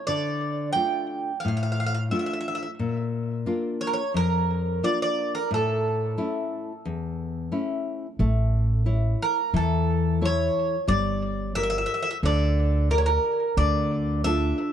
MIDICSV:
0, 0, Header, 1, 4, 480
1, 0, Start_track
1, 0, Tempo, 674157
1, 60, Time_signature, 4, 2, 24, 8
1, 10485, End_track
2, 0, Start_track
2, 0, Title_t, "Bouzouki"
2, 0, Program_c, 0, 25
2, 49, Note_on_c, 0, 74, 85
2, 507, Note_off_c, 0, 74, 0
2, 516, Note_on_c, 0, 79, 91
2, 982, Note_off_c, 0, 79, 0
2, 998, Note_on_c, 0, 77, 77
2, 1046, Note_off_c, 0, 77, 0
2, 1055, Note_on_c, 0, 77, 58
2, 1108, Note_off_c, 0, 77, 0
2, 1116, Note_on_c, 0, 77, 61
2, 1150, Note_off_c, 0, 77, 0
2, 1159, Note_on_c, 0, 77, 60
2, 1215, Note_off_c, 0, 77, 0
2, 1223, Note_on_c, 0, 77, 61
2, 1273, Note_off_c, 0, 77, 0
2, 1282, Note_on_c, 0, 77, 66
2, 1319, Note_off_c, 0, 77, 0
2, 1328, Note_on_c, 0, 77, 73
2, 1376, Note_off_c, 0, 77, 0
2, 1385, Note_on_c, 0, 77, 64
2, 1441, Note_off_c, 0, 77, 0
2, 1504, Note_on_c, 0, 76, 64
2, 1552, Note_off_c, 0, 76, 0
2, 1560, Note_on_c, 0, 76, 51
2, 1603, Note_off_c, 0, 76, 0
2, 1611, Note_on_c, 0, 76, 59
2, 1653, Note_off_c, 0, 76, 0
2, 1661, Note_on_c, 0, 76, 54
2, 1705, Note_off_c, 0, 76, 0
2, 1713, Note_on_c, 0, 76, 67
2, 1756, Note_off_c, 0, 76, 0
2, 1765, Note_on_c, 0, 76, 56
2, 1807, Note_off_c, 0, 76, 0
2, 1815, Note_on_c, 0, 76, 63
2, 1861, Note_off_c, 0, 76, 0
2, 1870, Note_on_c, 0, 76, 48
2, 1924, Note_off_c, 0, 76, 0
2, 2712, Note_on_c, 0, 73, 77
2, 2756, Note_off_c, 0, 73, 0
2, 2756, Note_on_c, 0, 70, 64
2, 2801, Note_on_c, 0, 73, 74
2, 2807, Note_off_c, 0, 70, 0
2, 2935, Note_off_c, 0, 73, 0
2, 2966, Note_on_c, 0, 70, 84
2, 3448, Note_on_c, 0, 74, 82
2, 3452, Note_off_c, 0, 70, 0
2, 3551, Note_off_c, 0, 74, 0
2, 3576, Note_on_c, 0, 74, 91
2, 3787, Note_off_c, 0, 74, 0
2, 3808, Note_on_c, 0, 70, 76
2, 3911, Note_off_c, 0, 70, 0
2, 3944, Note_on_c, 0, 69, 77
2, 5341, Note_off_c, 0, 69, 0
2, 6568, Note_on_c, 0, 70, 78
2, 6783, Note_off_c, 0, 70, 0
2, 6810, Note_on_c, 0, 69, 75
2, 7251, Note_off_c, 0, 69, 0
2, 7301, Note_on_c, 0, 73, 86
2, 7736, Note_off_c, 0, 73, 0
2, 7750, Note_on_c, 0, 74, 88
2, 8200, Note_off_c, 0, 74, 0
2, 8226, Note_on_c, 0, 76, 97
2, 8274, Note_off_c, 0, 76, 0
2, 8282, Note_on_c, 0, 76, 69
2, 8321, Note_off_c, 0, 76, 0
2, 8329, Note_on_c, 0, 76, 84
2, 8379, Note_off_c, 0, 76, 0
2, 8388, Note_on_c, 0, 76, 60
2, 8436, Note_off_c, 0, 76, 0
2, 8444, Note_on_c, 0, 76, 69
2, 8493, Note_off_c, 0, 76, 0
2, 8501, Note_on_c, 0, 76, 56
2, 8553, Note_off_c, 0, 76, 0
2, 8562, Note_on_c, 0, 76, 79
2, 8610, Note_off_c, 0, 76, 0
2, 8620, Note_on_c, 0, 76, 66
2, 8665, Note_off_c, 0, 76, 0
2, 8725, Note_on_c, 0, 74, 84
2, 9166, Note_off_c, 0, 74, 0
2, 9191, Note_on_c, 0, 70, 82
2, 9235, Note_off_c, 0, 70, 0
2, 9242, Note_on_c, 0, 73, 70
2, 9288, Note_off_c, 0, 73, 0
2, 9298, Note_on_c, 0, 70, 82
2, 9644, Note_off_c, 0, 70, 0
2, 9665, Note_on_c, 0, 74, 101
2, 10114, Note_off_c, 0, 74, 0
2, 10141, Note_on_c, 0, 76, 95
2, 10485, Note_off_c, 0, 76, 0
2, 10485, End_track
3, 0, Start_track
3, 0, Title_t, "Nylon-string guitar"
3, 0, Program_c, 1, 24
3, 58, Note_on_c, 1, 50, 54
3, 526, Note_off_c, 1, 50, 0
3, 539, Note_on_c, 1, 57, 48
3, 539, Note_on_c, 1, 62, 39
3, 544, Note_on_c, 1, 65, 44
3, 925, Note_off_c, 1, 57, 0
3, 925, Note_off_c, 1, 62, 0
3, 926, Note_off_c, 1, 65, 0
3, 1030, Note_on_c, 1, 45, 64
3, 1493, Note_off_c, 1, 45, 0
3, 1505, Note_on_c, 1, 57, 44
3, 1509, Note_on_c, 1, 62, 38
3, 1512, Note_on_c, 1, 65, 47
3, 1891, Note_off_c, 1, 57, 0
3, 1891, Note_off_c, 1, 62, 0
3, 1891, Note_off_c, 1, 65, 0
3, 1989, Note_on_c, 1, 46, 58
3, 2454, Note_off_c, 1, 46, 0
3, 2465, Note_on_c, 1, 58, 43
3, 2467, Note_on_c, 1, 62, 44
3, 2472, Note_on_c, 1, 65, 49
3, 2850, Note_off_c, 1, 58, 0
3, 2852, Note_off_c, 1, 62, 0
3, 2853, Note_off_c, 1, 65, 0
3, 2949, Note_on_c, 1, 41, 56
3, 3415, Note_off_c, 1, 41, 0
3, 3439, Note_on_c, 1, 58, 44
3, 3442, Note_on_c, 1, 62, 41
3, 3444, Note_on_c, 1, 65, 48
3, 3820, Note_off_c, 1, 58, 0
3, 3822, Note_off_c, 1, 62, 0
3, 3822, Note_off_c, 1, 65, 0
3, 3921, Note_on_c, 1, 45, 65
3, 4382, Note_off_c, 1, 45, 0
3, 4397, Note_on_c, 1, 57, 41
3, 4400, Note_on_c, 1, 61, 36
3, 4401, Note_on_c, 1, 64, 51
3, 4780, Note_off_c, 1, 57, 0
3, 4780, Note_off_c, 1, 61, 0
3, 4780, Note_off_c, 1, 64, 0
3, 4880, Note_on_c, 1, 40, 56
3, 5342, Note_off_c, 1, 40, 0
3, 5352, Note_on_c, 1, 57, 40
3, 5354, Note_on_c, 1, 61, 40
3, 5356, Note_on_c, 1, 64, 41
3, 5736, Note_off_c, 1, 57, 0
3, 5737, Note_off_c, 1, 61, 0
3, 5739, Note_off_c, 1, 64, 0
3, 5836, Note_on_c, 1, 57, 64
3, 6300, Note_off_c, 1, 57, 0
3, 6306, Note_on_c, 1, 64, 43
3, 6311, Note_on_c, 1, 73, 47
3, 6692, Note_off_c, 1, 64, 0
3, 6695, Note_off_c, 1, 73, 0
3, 6791, Note_on_c, 1, 52, 63
3, 7256, Note_off_c, 1, 52, 0
3, 7272, Note_on_c, 1, 69, 44
3, 7275, Note_on_c, 1, 64, 48
3, 7278, Note_on_c, 1, 73, 51
3, 7655, Note_off_c, 1, 69, 0
3, 7657, Note_off_c, 1, 64, 0
3, 7659, Note_off_c, 1, 73, 0
3, 7743, Note_on_c, 1, 55, 55
3, 8211, Note_off_c, 1, 55, 0
3, 8227, Note_on_c, 1, 67, 42
3, 8233, Note_on_c, 1, 70, 43
3, 8233, Note_on_c, 1, 74, 47
3, 8611, Note_off_c, 1, 67, 0
3, 8612, Note_off_c, 1, 70, 0
3, 8614, Note_off_c, 1, 74, 0
3, 8710, Note_on_c, 1, 50, 69
3, 9172, Note_off_c, 1, 50, 0
3, 9186, Note_on_c, 1, 67, 45
3, 9191, Note_on_c, 1, 70, 42
3, 9193, Note_on_c, 1, 74, 52
3, 9569, Note_off_c, 1, 67, 0
3, 9570, Note_off_c, 1, 70, 0
3, 9572, Note_off_c, 1, 74, 0
3, 9671, Note_on_c, 1, 50, 66
3, 10130, Note_off_c, 1, 50, 0
3, 10147, Note_on_c, 1, 62, 44
3, 10150, Note_on_c, 1, 65, 39
3, 10153, Note_on_c, 1, 69, 53
3, 10485, Note_off_c, 1, 62, 0
3, 10485, Note_off_c, 1, 65, 0
3, 10485, Note_off_c, 1, 69, 0
3, 10485, End_track
4, 0, Start_track
4, 0, Title_t, "Upright bass"
4, 0, Program_c, 2, 32
4, 5832, Note_on_c, 2, 33, 88
4, 6504, Note_off_c, 2, 33, 0
4, 6789, Note_on_c, 2, 40, 88
4, 7461, Note_off_c, 2, 40, 0
4, 7749, Note_on_c, 2, 31, 80
4, 8419, Note_off_c, 2, 31, 0
4, 8706, Note_on_c, 2, 38, 81
4, 9376, Note_off_c, 2, 38, 0
4, 9662, Note_on_c, 2, 38, 90
4, 10331, Note_off_c, 2, 38, 0
4, 10485, End_track
0, 0, End_of_file